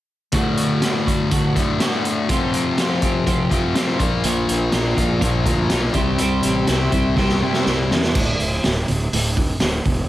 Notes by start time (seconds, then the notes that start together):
0.32 D2 A2 D3 A3 F#4, kick, closed hi-hat
0.57 D3 A3 F#4, closed hi-hat
0.82 A2 D3 A3 F#4, snare, closed hi-hat
1.06 D3 A3 F#4, kick, closed hi-hat
1.31 D2 A2 D3 A3 F#4, kick, closed hi-hat
1.55 D2 A2 D3 A3 F#4, kick, closed hi-hat
1.79 D2 A2 D3 A3 F#4, snare, closed hi-hat
2.05 closed hi-hat
2.29 F2 C3 F3 A3 C4 F4, kick, closed hi-hat
2.54 F3 A3 C4 F4, closed hi-hat
2.78 F3 A3 C4 F4, snare, closed hi-hat
3.02 F3 A3 C4 F4, kick, closed hi-hat
3.26 F2 C3 F3 A3 C4 F4, kick, closed hi-hat
3.50 F2 C3 F3 A3 C4 F4, kick, closed hi-hat
3.75 F2 C3 F3 A3 C4 F4, snare, closed hi-hat
3.99 A#2 F3 A#3 D4 F4 A#4, kick, closed hi-hat
4.24 A#1 A#2 F3 A#3 D4 F4 A#4, closed hi-hat
4.48 A#1 A#3 D4 F4 A#4, closed hi-hat
4.72 A#1 A#3 D4 F4 A#4, snare, closed hi-hat
4.96 A#1 A#3 D4 F4 A#4, kick, closed hi-hat
5.20 A#1 A#2 F3 A#3 D4 F4 A#4, kick, closed hi-hat
5.46 D2 A#2 F3 A#3 D4 F4 A#4, kick, closed hi-hat
5.69 B1 A#3 D4 F4 A#4, snare, closed hi-hat
5.94 C2 C3 G3 C4 E4 G4 C5, kick, closed hi-hat
6.18 C2 C3 G3 C4 E4 G4 C5, closed hi-hat
6.43 A1 C4 E4 G4 C5, closed hi-hat
6.67 C2 C4 E4 G4 C5, snare, closed hi-hat
6.92 C2 C4 E4 G4 C5, kick, closed hi-hat
7.16 C2 C3 G3 C4 E4 G4 C5, kick, snare
7.29 snare
7.41 C3 G3 C4 E4 G4 C5
7.53 snare
7.65 C2 C4 E4 G4 C5, snare
7.90 E2, snare
8.04 snare
8.15 D1 D2 A2 D3, kick, crash
8.39 D1 D2 A2, open hi-hat
8.64 D1 D2 A2, snare, open hi-hat
8.88 D1 D2 A2, open hi-hat
9.12 D1 D2 A2, open hi-hat
9.37 D2 A2, kick, open hi-hat
9.60 D1 D2 A2, snare, open hi-hat
9.85 E1 D2 A2, kick, open hi-hat